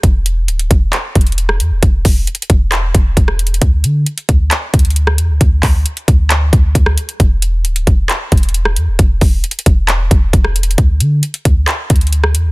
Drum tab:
HH |x-----------x-----------x-----x-----x-----------x-----------x--x--x--x--x-----------x-----------|x-----------o-----------x---x---x---x-----------x-----------x-----------x-----------x---x---x---|x-----------x-----------x-----x-----x-----------x-----------x--x--x--x--x-----------x-----------|x-----------o-----------x-----x-----x-----------x-----------x-----------x-----------x-----x-----|
CP |------------------------------------------------x-----------------------------------------------|------------------------------------------------x-----------------------------------------------|------------------------------------------------x-----------------------------------------------|------------x-----------------------------------x-----------------------------------------------|
SD |------------------------------------------------------------------------------r-----------------|------------------------------------------------------------------------------r-----------------|------------------------------------------------------------------------------r-----------------|------------------------------------------------------------------------------r-----------------|
BD |o-----------------------------------o-----------------------o-----------------------------------|o-----------o-----------------------o-----------------------o-----------o-----------------------|o-----------------------------------o-----------------------o-----------------------------------|o-----------o-----------------------o-----------------------o-----------o-----------------------|

HH |x-----------x-----------x-----x-----x-----------x-----------x--x--x--x--x-----------x-----------|x-----------o-----------x---x---x---x-----------x-----------x-----------x-----------x---x---x---|x-----------x-----------x-----x-----x-----------x-----------x--x--x--x--x-----------x-----------|
CP |------------------------------------------------x-----------------------------------------------|------------------------------------------------x-----------------------------------------------|------------------------------------------------x-----------------------------------------------|
SD |------------------------------------------------------------------------------r-----------------|------------------------------------------------------------------------------r-----------------|------------------------------------------------------------------------------r-----------------|
BD |o-----------------------------------o-----------------------o-----------------------------------|o-----------o-----------------------o-----------------------o-----------o-----------------------|o-----------------------------------o-----------------------o-----------------------------------|